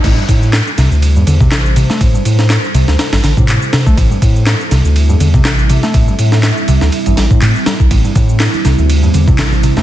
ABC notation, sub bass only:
X:1
M:4/4
L:1/16
Q:"Swing 16ths" 1/4=122
K:Am
V:1 name="Sub bass" clef=bass
A,,, z A,,3 z C,, D,,2 E,, E,, z A,,,3 z | z2 A,,3 z C,, D,, z A,,, A,,, A,, A,, z2 C,, | A,,, z A,,3 z C,, D,,2 E,, E,, z A,,,3 z | z2 A,,3 z C,, D,, z A,,, A,,, A,, A,, z2 C,, |
A,,, z A,,3 z C,, D,,2 E,, E,, z A,,,3 z |]